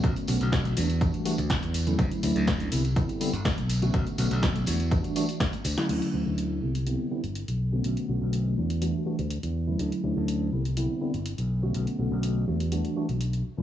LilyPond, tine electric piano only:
\new Staff \with { instrumentName = "Tine electric piano" } { \time 4/4 \key e \dorian \tempo 4 = 123 <d a b cis' fis'>8 <d a b cis' fis'>4 <e g a d' fis'>16 r16 <e g a d' fis'>8 <e g a d' fis'>16 r4 <d fis a cis' e'>16~ | <d fis a cis' e'>8 <d fis a cis' e'>4 <d g b c' e'>16 r16 <d g b c' e'>8 <d g b c' e'>16 r4 <d a b cis' fis'>16~ | <d a b cis' fis'>8 <d a b cis' fis'>4 <e g a d' fis'>16 r16 <e g a d' fis'>8 <e g a d' fis'>16 r4 <d fis a cis' e'>16~ | <d fis a cis' e'>8 <d fis a cis' e'>4 <d g b c' e'>16 r16 <d g b c' e'>8 <d g b c' e'>16 r4 <d a b cis' fis'>16~ |
<d a b cis' fis'>8 <d a b cis' fis'>4 <e g a d' fis'>16 r16 <e g a d' fis'>8 <e g a d' fis'>16 r4 <d fis a cis' e'>16~ | <d fis a cis' e'>8 <d fis a cis' e'>4 <d g b c' e'>16 r16 <d g b c' e'>8 <d g b c' e'>16 r4 <d a b cis' fis'>16~ | <d a b cis' fis'>8 <d a b cis' fis'>4 <e g a d' fis'>16 r16 <e g a d' fis'>8 <e g a d' fis'>16 r4 <d fis a cis' e'>16 | }